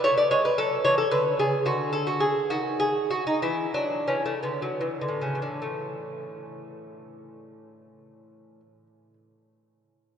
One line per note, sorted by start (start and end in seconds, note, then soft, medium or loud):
0.04 0.23 A3 medium
0.04 0.17 C#5 loud
0.17 0.31 D5 medium
0.31 0.50 G#3 medium
0.31 0.44 C#5 medium
0.45 0.58 B4 medium
0.58 0.77 F#3 medium
0.58 0.83 A4 medium
0.85 1.04 E3 medium
0.85 0.97 C#5 medium
0.98 1.11 A4 medium
1.11 1.31 D3 medium
1.11 1.37 B4 medium
1.39 1.59 C#3 medium
1.39 1.65 G#4 medium
1.66 2.26 D3 medium
1.66 1.92 F#4 medium
1.93 2.07 A4 medium
2.07 2.21 F#4 medium
2.20 2.48 G#4 medium
2.50 3.16 D#3 medium
2.50 2.78 F#4 medium
2.80 3.09 G#4 medium
3.10 3.26 F#4 medium
3.27 3.42 D#4 medium
3.42 3.65 E3 medium
3.42 3.73 E4 medium
3.74 3.99 F#3 medium
3.74 4.07 D4 medium
4.08 4.34 E3 medium
4.08 4.25 C#4 medium
4.26 4.42 A3 medium
4.43 4.61 D3 medium
4.43 5.57 B3 medium
4.62 4.80 F#3 medium
4.81 5.00 E3 medium
5.01 5.21 D3 medium
5.08 8.60 A2 medium
5.21 5.41 C#3 medium
5.35 8.87 E3 soft
5.42 5.61 D3 medium
5.62 9.13 A3 soft